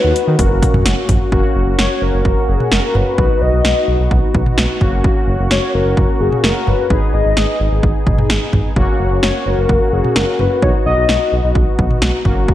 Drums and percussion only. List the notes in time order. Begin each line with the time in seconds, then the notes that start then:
0.16 closed hi-hat
0.39 kick, closed hi-hat
0.62 kick, closed hi-hat, mid tom
0.74 mid tom
0.86 snare, closed hi-hat
1.09 kick, closed hi-hat, mid tom
1.32 kick
1.79 snare
2.25 kick
2.60 mid tom
2.72 snare
2.95 mid tom
3.18 kick
3.65 snare
4.11 kick
4.35 kick
4.46 mid tom
4.58 snare
4.81 kick, mid tom
5.04 kick
5.51 snare
5.97 kick
6.32 mid tom
6.44 snare
6.67 mid tom
6.90 kick
7.37 snare
7.83 kick
8.07 kick, mid tom
8.18 mid tom
8.30 snare
8.53 kick, mid tom
8.76 kick
9.23 snare
9.69 kick
10.04 mid tom
10.16 snare
10.39 mid tom
10.62 kick
11.09 snare
11.55 kick
11.79 kick
11.91 mid tom
12.02 snare
12.25 kick, mid tom
12.48 kick